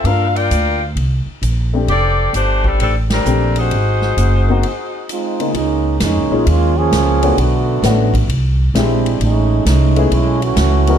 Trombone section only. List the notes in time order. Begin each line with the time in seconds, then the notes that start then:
5.11 G#3 C4 D#4 F4
5.56 G#3 A#3 C#4 D#4
6.02 G#3 A#3 C#4 D#4
6.47 G#3 A#3 C#4 F4
6.77 F3 A#3 C#4 G#4
7.38 D3 A3 B3 F#4
8.77 G#3 C4 D4 E4
9.22 G#3 A3 C#4 D#4
9.66 G#3 A3 C#4 D#4
10.12 G#3 A3 C#4 E4
10.43 E3 A3 C#4 F#4